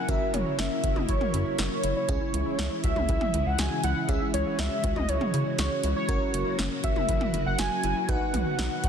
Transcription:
0.00 8.05 C#3 medium
0.00 2.05 F#3 medium
0.00 2.05 A#3 medium
0.00 0.10 F#5 loud
0.09 0.19 F#1 loud
0.09 2.05 C#4 medium
0.09 2.07 E4 medium
0.09 2.05 F#4 medium
0.09 2.05 A#4 medium
0.09 0.35 E5 loud
0.09 kick loud
0.09 closed hi-hat medium
0.21 0.41 E4 medium
0.34 0.44 F#1 loud
0.34 0.60 C#5 medium
0.34 closed hi-hat medium
0.34 mid tom medium
0.46 0.56 E4 medium
0.59 0.69 F#1 loud
0.59 0.79 C#4 medium
0.59 0.98 E5 loud
0.59 snare loud
0.59 closed hi-hat medium
0.84 0.94 F#1 loud
0.84 0.94 F#4 medium
0.84 kick medium
0.84 closed hi-hat medium
0.96 1.06 F#1 medium
0.96 1.06 E4 medium
0.96 1.08 D#5 medium
0.96 mid tom medium
1.09 1.19 F#1 loud
1.09 1.29 E4 medium
1.09 1.55 C#5 medium
1.09 kick loud
1.09 closed hi-hat medium
1.21 mid tom medium
1.34 1.44 F#2 loud
1.34 1.54 E4 medium
1.34 closed hi-hat medium
1.58 1.69 F#1 loud
1.58 1.79 F#4 medium
1.58 1.94 C#5 medium
1.58 snare loud
1.58 closed hi-hat medium
1.84 1.94 F#1 medium
1.84 1.94 E4 medium
1.84 closed hi-hat medium
1.96 2.06 E4 medium
1.96 2.80 C#5 loud
2.09 2.19 C#2 loud
2.09 6.05 E3 medium
2.09 6.05 G#3 medium
2.09 4.05 C#4 medium
2.09 4.05 E4 medium
2.09 4.07 E4 medium
2.09 4.05 G#4 medium
2.09 kick loud
2.09 closed hi-hat medium
2.21 2.41 E4 medium
2.34 2.44 C#2 loud
2.34 closed hi-hat medium
2.46 2.56 E4 medium
2.59 2.69 C#2 loud
2.59 2.79 C#4 medium
2.59 snare loud
2.59 closed hi-hat medium
2.84 2.94 C#2 loud
2.84 2.94 F#4 medium
2.84 3.48 E5 loud
2.84 kick medium
2.84 closed hi-hat medium
2.96 3.06 C#2 loud
2.96 3.06 E4 medium
2.96 mid tom medium
3.09 3.19 C#2 loud
3.09 3.29 E4 medium
3.09 kick loud
3.09 closed hi-hat medium
3.21 mid tom medium
3.34 3.44 C#2 loud
3.34 3.54 E4 medium
3.34 closed hi-hat medium
3.46 3.56 C#2 loud
3.46 3.60 F#5 loud
3.59 3.69 C#2 loud
3.59 3.79 F#4 medium
3.59 3.83 G#5 loud
3.59 snare loud
3.59 closed hi-hat medium
3.84 3.94 C#2 loud
3.84 3.94 E4 medium
3.84 4.10 F#5 medium
3.84 closed hi-hat medium
3.96 4.06 E4 medium
4.09 4.19 C#2 loud
4.09 6.05 C#4 medium
4.09 6.05 E4 medium
4.09 8.89 F#4 medium
4.09 6.05 G#4 medium
4.09 4.33 E5 loud
4.09 kick loud
4.09 closed hi-hat medium
4.21 4.41 E4 medium
4.34 4.44 C#2 loud
4.34 4.60 C#5 medium
4.34 closed hi-hat medium
4.46 4.56 E4 medium
4.59 4.69 C#2 loud
4.59 4.79 C#4 medium
4.59 4.96 E5 medium
4.59 snare loud
4.59 closed hi-hat medium
4.84 4.94 C#2 loud
4.84 4.94 F#4 medium
4.84 kick medium
4.84 closed hi-hat medium
4.96 5.06 C#2 loud
4.96 5.06 E4 medium
4.96 5.10 D#5 medium
4.96 mid tom loud
5.09 5.19 C#2 loud
5.09 5.29 E4 medium
5.09 5.58 C#5 medium
5.09 closed hi-hat medium
5.21 mid tom medium
5.34 5.44 C#3 medium
5.34 5.54 E4 medium
5.34 closed hi-hat medium
5.59 5.69 C#2 loud
5.59 5.79 F#4 medium
5.59 5.94 C#5 medium
5.59 snare loud
5.59 closed hi-hat medium
5.84 5.94 C#2 loud
5.84 5.94 E4 medium
5.84 closed hi-hat medium
5.96 6.06 E4 medium
5.96 6.55 C#5 medium
6.09 6.19 F#1 loud
6.09 8.07 F#3 medium
6.09 8.07 A#3 medium
6.09 8.05 C#4 medium
6.09 8.05 F#4 medium
6.09 8.05 A#4 medium
6.09 kick loud
6.09 closed hi-hat medium
6.21 6.41 E4 medium
6.34 6.44 F#1 loud
6.34 closed hi-hat medium
6.46 6.56 E4 medium
6.59 6.69 F#1 loud
6.59 6.79 C#4 medium
6.59 snare loud
6.59 closed hi-hat medium
6.84 6.94 F#1 loud
6.84 6.94 F#4 medium
6.84 7.42 E5 loud
6.84 kick medium
6.84 closed hi-hat medium
6.96 7.06 F#1 medium
6.96 7.06 E4 medium
6.96 mid tom medium
7.09 7.19 F#1 loud
7.09 7.29 E4 medium
7.09 kick loud
7.09 closed hi-hat medium
7.21 mid tom loud
7.34 7.44 F#1 loud
7.34 7.54 E4 medium
7.34 closed hi-hat medium
7.46 7.56 F#1 loud
7.46 7.58 F#5 loud
7.59 7.69 F#1 loud
7.59 7.79 F#4 medium
7.59 8.10 G#5 loud
7.59 snare loud
7.59 closed hi-hat medium
7.84 7.94 F#1 loud
7.84 7.94 E4 medium
7.84 closed hi-hat medium
7.96 8.06 E4 medium
8.09 8.19 B1 loud
8.09 8.89 D#3 medium
8.09 8.89 F#3 medium
8.09 8.89 B3 medium
8.09 8.89 D#4 medium
8.09 8.89 F#4 medium
8.09 8.89 B4 medium
8.09 8.89 F#5 loud
8.09 kick loud
8.09 closed hi-hat medium
8.21 8.41 F#4 medium
8.34 8.44 B1 medium
8.34 closed hi-hat medium
8.34 mid tom medium
8.46 8.56 F#4 medium
8.59 8.69 B1 loud
8.59 8.79 D#4 medium
8.59 snare loud
8.59 closed hi-hat medium
8.84 8.89 B1 loud
8.84 8.89 F#4 medium
8.84 kick medium
8.84 closed hi-hat medium

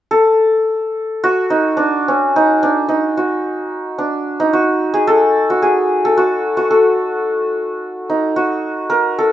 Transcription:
0.11 3.04 A4 medium
1.24 3.17 F#4 loud
1.50 1.83 D#4 medium
1.77 2.14 D4 medium
2.08 2.69 C#4 medium
2.36 2.69 D#4 medium
2.63 2.95 D4 medium
2.89 4.04 D#4 medium
3.17 4.53 F#4 medium
3.98 4.46 D4 medium
4.40 7.99 D#4 medium
4.53 5.50 F#4 medium
4.94 5.13 G#4 medium
5.07 5.68 A4 medium
5.50 6.17 F#4 medium
5.62 6.11 G#4 medium
6.05 6.70 A4 medium
6.17 6.56 F#4 medium
6.57 8.36 F#4 medium
6.71 8.96 A4 medium
8.09 9.32 D#4 medium
8.36 9.32 F#4 medium
8.90 9.24 A#4 medium
9.18 9.32 A4 medium

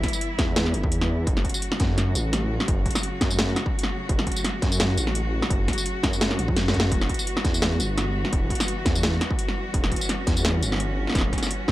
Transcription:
0.00 1.23 E3 medium
0.00 1.23 G3 medium
0.00 1.23 B3 medium
0.00 1.24 E4 loud
0.00 kick medium
0.00 snare soft
0.00 closed hi-hat soft
0.08 closed hi-hat medium
0.13 tambourine medium
0.21 closed hi-hat medium
0.39 0.75 E2 loud
0.39 kick loud
0.39 snare soft
0.39 snare medium
0.39 closed hi-hat medium
0.56 snare loud
0.56 closed hi-hat medium
0.56 tambourine soft
0.66 snare soft
0.74 0.85 G1 medium
0.74 closed hi-hat medium
0.84 1.26 E2 medium
0.84 kick loud
0.92 closed hi-hat medium
1.01 snare medium
1.27 1.43 F#1 loud
1.27 6.88 C#3 medium
1.27 6.88 F#3 medium
1.27 6.88 A3 medium
1.27 11.72 F#4 medium
1.27 kick loud
1.27 closed hi-hat medium
1.37 snare soft
1.44 kick medium
1.44 closed hi-hat soft
1.49 closed hi-hat medium
1.54 tambourine medium
1.62 closed hi-hat medium
1.72 snare medium
1.80 2.17 F#2 loud
1.80 kick loud
1.80 snare soft
1.80 closed hi-hat medium
1.82 snare soft
1.85 snare soft
1.87 snare soft
1.89 snare soft
1.92 snare soft
1.94 snare soft
1.96 snare soft
1.98 snare medium
1.98 closed hi-hat medium
2.15 2.59 A1 loud
2.15 closed hi-hat medium
2.15 tambourine medium
2.33 snare medium
2.33 closed hi-hat medium
2.60 snare soft
2.68 2.84 F#1 loud
2.68 kick loud
2.68 closed hi-hat medium
2.86 kick medium
2.86 closed hi-hat soft
2.91 closed hi-hat medium
2.95 snare medium
2.95 tambourine medium
3.03 closed hi-hat medium
3.21 3.55 F#2 loud
3.21 kick loud
3.21 snare soft
3.21 snare medium
3.21 closed hi-hat medium
3.31 tambourine medium
3.39 snare loud
3.39 closed hi-hat medium
3.39 tambourine soft
3.56 snare medium
3.56 closed hi-hat medium
3.66 kick loud
3.79 closed hi-hat medium
3.83 snare medium
4.09 4.26 F#1 loud
4.09 kick loud
4.09 closed hi-hat medium
4.19 snare medium
4.27 kick medium
4.27 closed hi-hat soft
4.32 closed hi-hat medium
4.36 tambourine medium
4.45 snare medium
4.45 closed hi-hat medium
4.62 4.99 F#2 loud
4.62 kick loud
4.62 snare soft
4.62 closed hi-hat medium
4.72 tambourine medium
4.80 snare loud
4.80 snare medium
4.80 closed hi-hat medium
4.98 5.41 A1 loud
4.98 closed hi-hat medium
4.98 tambourine medium
5.07 snare medium
5.15 closed hi-hat medium
5.42 snare medium
5.50 5.67 F#1 loud
5.50 kick loud
5.50 closed hi-hat medium
5.68 kick medium
5.68 snare medium
5.68 closed hi-hat medium
5.73 closed hi-hat medium
5.78 tambourine medium
5.86 closed hi-hat medium
6.03 6.40 F#2 loud
6.03 kick loud
6.03 snare soft
6.03 snare medium
6.03 closed hi-hat medium
6.13 tambourine medium
6.21 snare loud
6.21 closed hi-hat medium
6.21 tambourine soft
6.31 snare medium
6.39 6.50 A1 medium
6.39 closed hi-hat medium
6.48 6.91 F#2 loud
6.48 kick loud
6.57 snare medium
6.57 closed hi-hat medium
6.68 snare medium
6.74 kick medium
6.74 closed hi-hat soft
6.80 snare loud
6.91 7.08 E1 loud
6.91 11.72 E3 medium
6.91 11.72 G3 medium
6.91 9.71 B3 medium
6.91 kick loud
6.91 closed hi-hat medium
7.01 snare medium
7.09 kick medium
7.09 closed hi-hat medium
7.14 closed hi-hat medium
7.19 tambourine medium
7.27 closed hi-hat medium
7.37 snare medium
7.45 7.81 E2 loud
7.45 kick loud
7.45 snare soft
7.45 closed hi-hat medium
7.54 tambourine medium
7.62 snare loud
7.62 snare medium
7.62 closed hi-hat medium
7.80 8.24 G1 loud
7.80 closed hi-hat medium
7.80 tambourine medium
7.98 snare medium
7.98 closed hi-hat medium
8.25 snare medium
8.33 8.49 E1 loud
8.33 kick loud
8.33 closed hi-hat medium
8.50 kick medium
8.50 closed hi-hat medium
8.55 closed hi-hat medium
8.60 snare medium
8.60 tambourine medium
8.68 closed hi-hat medium
8.86 9.20 E2 loud
8.86 kick loud
8.86 snare soft
8.86 snare medium
8.86 closed hi-hat medium
8.95 tambourine medium
9.03 snare loud
9.03 closed hi-hat medium
9.03 tambourine soft
9.21 snare medium
9.21 closed hi-hat medium
9.31 kick loud
9.39 closed hi-hat medium
9.48 snare medium
9.74 9.90 E1 loud
9.74 11.72 C#4 medium
9.74 kick loud
9.74 closed hi-hat medium
9.84 snare medium
9.92 kick medium
9.92 closed hi-hat soft
9.96 closed hi-hat medium
10.01 tambourine medium
10.09 snare medium
10.09 closed hi-hat medium
10.27 10.64 E2 loud
10.27 kick loud
10.27 snare soft
10.27 closed hi-hat medium
10.37 tambourine medium
10.45 snare loud
10.45 snare medium
10.45 closed hi-hat medium
10.48 snare medium
10.51 snare soft
10.62 11.06 G1 loud
10.62 closed hi-hat medium
10.62 tambourine medium
10.72 snare soft
10.74 snare soft
10.76 snare soft
10.78 snare soft
10.78 closed hi-hat medium
11.07 snare soft
11.10 snare soft
11.12 11.32 E1 loud
11.12 kick loud
11.12 snare soft
11.15 snare medium
11.15 closed hi-hat medium
11.18 snare medium
11.21 snare medium
11.33 kick medium
11.33 snare soft
11.33 closed hi-hat soft
11.38 snare soft
11.38 closed hi-hat medium
11.43 snare soft
11.43 tambourine medium
11.47 snare soft
11.47 closed hi-hat medium
11.68 11.72 E2 loud
11.68 kick loud
11.68 snare soft
11.68 snare medium

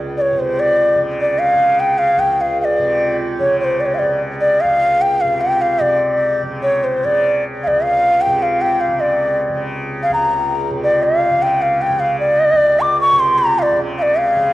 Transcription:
0.00 2.16 C#2 medium
0.00 0.32 C3 medium
0.00 0.95 C#3 medium
0.18 0.41 C#5 medium
0.18 0.22 D5 medium
0.32 2.79 C3 medium
0.39 0.61 C5 medium
0.60 1.00 D5 medium
0.95 1.53 C#3 medium
1.20 1.40 D5 medium
1.39 1.81 F5 medium
1.53 3.40 C#3 medium
1.80 2.00 G5 medium
1.98 2.21 F5 medium
2.17 4.63 C#2 medium
2.17 2.42 G5 medium
2.41 2.60 F5 medium
2.61 3.17 D5 medium
2.61 2.65 F5 medium
2.79 5.23 C3 medium
3.40 4.02 C#3 medium
3.40 3.59 C#5 medium
3.60 3.65 C#5 medium
3.64 3.82 C5 medium
3.80 3.88 D5 medium
3.86 3.96 C#5 medium
3.95 4.00 F5 medium
3.99 6.43 C#3 soft
3.99 4.21 D5 medium
4.41 4.62 D5 medium
4.61 7.66 C#2 soft
4.61 5.03 F5 medium
5.01 5.22 G5 medium
5.21 5.80 C3 medium
5.21 5.42 F5 medium
5.41 5.63 G5 medium
5.61 5.83 F5 medium
5.80 8.26 C3 medium
5.80 6.42 D5 medium
6.43 7.05 C#3 medium
6.63 6.85 C#5 medium
6.84 7.06 C5 medium
7.05 8.88 C#3 medium
7.05 7.43 D5 medium
7.63 10.09 C#2 medium
7.63 7.68 F5 medium
7.67 7.85 D5 medium
7.83 8.23 F5 medium
8.21 8.44 G5 medium
8.26 10.70 C3 medium
8.42 8.63 F5 medium
8.61 8.82 G5 medium
8.80 9.02 F5 medium
8.88 9.49 C#3 soft
9.00 9.61 D5 medium
9.49 11.31 C#3 medium
10.03 10.12 F5 medium
10.10 12.52 C#2 medium
10.14 10.68 A#5 medium
10.70 13.12 C3 medium
10.84 11.04 D5 medium
11.03 11.43 F5 medium
11.31 11.90 C#3 medium
11.42 11.63 G5 medium
11.62 11.83 F5 medium
11.81 12.01 G5 medium
11.90 13.72 C#3 medium
11.99 12.19 F5 medium
12.19 12.82 D5 medium
12.52 14.53 C#2 medium
12.80 13.00 D6 medium
13.01 13.21 C#6 loud
13.13 14.53 C3 medium
13.19 13.40 C6 medium
13.38 13.60 A#5 loud
13.59 13.79 D5 medium
13.59 13.63 F5 medium
13.72 14.36 C#3 medium
13.98 14.03 F5 medium
14.02 14.20 D5 medium
14.18 14.53 F5 medium
14.36 14.53 C#3 medium

